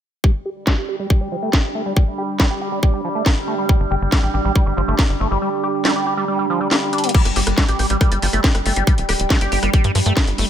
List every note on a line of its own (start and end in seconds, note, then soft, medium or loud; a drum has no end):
0.24 0.31 G3 medium
0.24 7.13 G3 medium
0.24 10.50 D4 medium
0.24 kick loud
0.38 10.50 G4 medium
0.45 0.50 G4 medium
0.67 0.74 G3 loud
0.67 kick loud
0.67 snare loud
0.78 0.88 G4 medium
0.89 0.96 G4 medium
0.89 10.50 D5 medium
0.99 1.07 G3 medium
1.10 1.20 G3 medium
1.10 kick loud
1.21 1.28 G3 medium
1.32 1.36 F3 medium
1.40 1.50 A3 medium
1.40 10.50 G5 medium
1.53 1.58 A#3 medium
1.53 kick loud
1.53 snare loud
1.75 1.82 A3 medium
1.86 1.93 G3 medium
1.97 2.04 G3 medium
1.97 kick loud
2.18 2.23 G4 medium
2.40 2.47 G3 loud
2.40 kick loud
2.40 snare loud
2.50 2.61 G4 medium
2.61 2.69 G4 medium
2.72 2.79 G3 medium
2.83 2.93 G3 medium
2.83 kick loud
2.94 3.01 G3 medium
3.04 3.09 F3 medium
3.15 3.23 A3 medium
3.26 3.30 A#3 medium
3.26 kick loud
3.26 snare loud
3.48 3.55 A3 medium
3.58 3.66 G3 medium
3.69 3.77 G3 medium
3.69 kick loud
3.80 3.86 G1 medium
3.91 3.97 G1 loud
3.91 3.95 G4 medium
4.02 4.08 G1 medium
4.12 4.20 G3 loud
4.12 kick loud
4.12 snare loud
4.23 4.29 A1 medium
4.23 4.33 G4 medium
4.34 4.40 A1 loud
4.34 4.41 G4 medium
4.45 4.51 A1 medium
4.45 4.52 G3 medium
4.56 4.66 G3 medium
4.56 kick loud
4.66 4.72 G1 medium
4.66 4.74 G3 medium
4.77 4.83 G1 loud
4.77 4.82 F3 medium
4.88 4.94 G1 medium
4.88 4.95 A3 medium
4.99 5.03 A#3 medium
4.99 kick loud
4.99 snare loud
5.09 5.15 G1 medium
5.20 5.26 G1 loud
5.20 5.28 A3 medium
5.31 5.37 G1 medium
5.31 5.38 G3 medium
5.42 5.49 G3 medium
5.63 5.68 G4 medium
5.85 5.92 G3 loud
5.85 snare loud
5.96 6.06 G4 medium
6.07 6.14 G4 medium
6.17 6.25 G3 medium
6.28 6.38 G3 medium
6.39 6.46 G3 medium
6.50 6.60 F3 medium
6.60 6.68 G3 medium
6.71 6.76 A#3 medium
6.71 snare loud
6.93 7.05 D4 medium
6.93 closed hi-hat medium
6.98 closed hi-hat medium
7.04 7.11 A#3 medium
7.04 closed hi-hat medium
7.09 closed hi-hat medium
7.14 7.22 G3 medium
7.14 10.50 G3 medium
7.14 kick loud
7.14 closed hi-hat medium
7.14 crash loud
7.25 7.31 G1 medium
7.25 cross-stick soft
7.25 closed hi-hat medium
7.36 7.42 G1 loud
7.36 7.40 G4 medium
7.36 open hi-hat loud
7.47 7.53 G1 medium
7.47 cross-stick medium
7.47 closed hi-hat medium
7.58 7.65 G3 loud
7.58 kick loud
7.58 snare loud
7.58 closed hi-hat medium
7.68 7.74 A1 medium
7.68 7.79 G4 medium
7.68 closed hi-hat medium
7.79 7.85 A1 loud
7.79 7.87 G4 medium
7.79 cross-stick soft
7.79 open hi-hat medium
7.90 7.96 A1 medium
7.90 7.97 G3 medium
7.90 closed hi-hat medium
8.01 8.11 G3 medium
8.01 kick loud
8.01 cross-stick medium
8.01 closed hi-hat medium
8.12 8.18 G1 medium
8.12 8.19 G3 medium
8.12 closed hi-hat medium
8.22 8.28 G1 loud
8.22 8.27 F3 medium
8.22 open hi-hat loud
8.33 8.39 G1 medium
8.33 8.41 A3 medium
8.33 cross-stick soft
8.33 closed hi-hat medium
8.44 8.48 A#3 medium
8.44 kick loud
8.44 snare loud
8.44 closed hi-hat medium
8.55 8.61 G1 medium
8.55 cross-stick medium
8.55 closed hi-hat medium
8.66 8.72 G1 loud
8.66 8.73 A3 medium
8.66 open hi-hat medium
8.76 8.82 G1 medium
8.76 8.84 G3 medium
8.76 closed hi-hat medium
8.87 8.95 G3 medium
8.87 kick loud
8.87 cross-stick soft
8.87 closed hi-hat medium
8.98 9.04 D1 medium
8.98 closed hi-hat medium
9.09 9.15 D1 loud
9.09 9.13 G4 medium
9.09 cross-stick medium
9.09 open hi-hat loud
9.20 9.26 D1 medium
9.20 closed hi-hat medium
9.30 9.38 G3 loud
9.30 kick loud
9.30 snare loud
9.30 closed hi-hat medium
9.41 9.47 G1 medium
9.41 9.51 G4 medium
9.41 cross-stick soft
9.41 closed hi-hat medium
9.52 9.58 G1 loud
9.52 9.59 G4 medium
9.52 open hi-hat loud
9.63 9.69 G1 medium
9.63 9.70 G3 medium
9.63 cross-stick medium
9.63 closed hi-hat medium
9.73 9.84 G3 medium
9.73 kick loud
9.73 closed hi-hat medium
9.84 9.90 G2 medium
9.84 9.92 G3 medium
9.84 closed hi-hat medium
9.95 10.01 G2 loud
9.95 9.99 F3 medium
9.95 cross-stick soft
9.95 open hi-hat loud
10.06 10.12 G2 medium
10.06 10.13 A3 medium
10.06 closed hi-hat medium
10.17 10.21 A#3 medium
10.17 kick loud
10.17 cross-stick medium
10.17 snare loud
10.17 closed hi-hat medium
10.27 10.34 G1 medium
10.27 closed hi-hat medium
10.38 10.44 G1 loud
10.38 10.46 A3 medium
10.38 open hi-hat medium